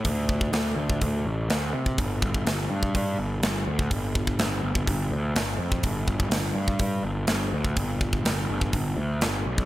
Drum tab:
HH |o---o---o---o---|o---o---o---o---|o---o---o---o---|o---o---o---o---|
SD |----o-------o---|----o-------o---|----o-------o---|----o-------o---|
BD |o-oo---oo------o|o-oo---oo------o|o-oo---oo------o|o-oo---oo------o|

HH |o---o---o---o---|
SD |----o-------o---|
BD |o-oo---oo------o|